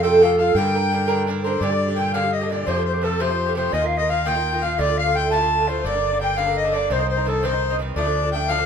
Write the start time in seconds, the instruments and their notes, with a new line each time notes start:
Already playing: fretless electric bass F2
0.02 bouzouki C3 A3 F4 A4, accordion G5, flute G5
0.22 bouzouki C3 A3 F4 A4, flute F5
0.38 bouzouki F4 A4, accordion F5, flute F5
0.42 bouzouki A3
0.55 fretless electric bass G2, bouzouki G2 D3 D4 A#4, accordion G5, flute G5
0.75 bouzouki D3 D4 A#4
0.91 bouzouki G2 D3 D4 A#4
1.08 bouzouki G2 D3 D4 A#4
1.27 bouzouki G2 D3 D4 A#4
1.44 bouzouki D3 D4 A#4, accordion C5, flute C5
1.60 fretless electric bass G2, bouzouki A#2 D3 D4 G4, accordion D5, flute D5
1.70 bouzouki D3 D4 G4
1.88 bouzouki D3 D4 G4
1.96 bouzouki A#2 D3 D4 G4, accordion G5, flute G5
2.13 bouzouki A#2 D3 D4 G4, accordion F5, flute F5
2.23 bouzouki D3 D4 G4
2.32 accordion D#5, flute D#5
2.41 bouzouki D3 D4 G4
2.49 bouzouki A#2 D3 D4 G4, accordion D5, flute D5
2.66 fretless electric bass F2, bouzouki C3 F3 A3 G4, accordion C5, flute C5
2.76 bouzouki F3 A3 G4
2.85 accordion C5, flute C5
2.93 bouzouki F3 A3 G4
3.01 bouzouki C3 F3 A3 G4, accordion A4, flute A4
3.19 bouzouki C3 F3 A3 G4, accordion C5, flute C5
3.29 bouzouki F3 A3 G4
3.46 bouzouki F3 A3 G4
3.55 bouzouki C3 F3 A3 G4, flute C5, accordion C5
3.72 fretless electric bass D#2, bouzouki A#2 D#3 A#3 F4, flute D#5, accordion D#5
3.82 bouzouki D#3 A#3 F4, flute F5
3.97 bouzouki A#3 F4, flute D#5, accordion D#5
4.02 bouzouki D#3
4.08 bouzouki A#2 D#3 A#3 F4, flute F5, accordion F5
4.25 bouzouki A#2 D#3 A#3 F4, flute G5, accordion G5
4.35 bouzouki D#3 A#3 F4
4.53 bouzouki D#3 A#3 F4
4.62 bouzouki A#2 D#3 A#3 F4, flute F5, accordion F5
4.78 fretless electric bass D2, bouzouki A2 D3 A3 F4, flute D5, accordion D5
4.87 bouzouki D3 A3 F4
4.97 flute F5, accordion F5
5.06 bouzouki D3 A3 F4
5.14 bouzouki A2 D3 A3 F4, flute G5, accordion G5
5.30 bouzouki A2 D3 A3 F4, flute A5, accordion A5
5.41 bouzouki D3 A3 F4
5.58 bouzouki D3 A3 F4
5.67 bouzouki A2 D3 A3 F4, flute C5, accordion C5
5.84 fretless electric bass G1, bouzouki G2 D3 A#3 D4, accordion D5, flute D5
5.94 bouzouki D3 A#3 D4
6.11 bouzouki D3 A#3 D4
6.20 bouzouki G2 D3 A#3 D4, accordion G5, flute G5
6.37 bouzouki G2 D3 A#3 D4, accordion F5, flute F5
6.46 bouzouki D3 A#3 D4
6.57 accordion D#5, flute D#5
6.64 bouzouki D3 A#3 D4
6.72 bouzouki G2 D3 A#3 D4, accordion D5, flute D5
6.90 fretless electric bass C2, bouzouki G2 D#3 C4 D#4, accordion C5, flute C5
6.99 bouzouki D#3 C4 D#4
7.09 accordion C5, flute C5
7.17 bouzouki D#3 C4 D#4
7.26 bouzouki G2 D#3 C4 D#4, accordion A4, flute A4
7.43 bouzouki G2 D#3 C4 D#4, accordion C5, flute C5
7.52 bouzouki D#3 C4 D#4
7.70 bouzouki D#3 C4 D#4
7.79 bouzouki G2 D#3 C4 D#4
7.96 fretless electric bass D2, bouzouki A2 F3 A3 D4, accordion D5, flute D5
8.05 bouzouki F3 A3 D4
8.23 bouzouki F3 A3 D4
8.32 bouzouki A2 F3 A3 D4, accordion G5, flute G5
8.48 bouzouki A2 F3 A3 D4, accordion F5, flute F5
8.58 bouzouki F3 A3 D4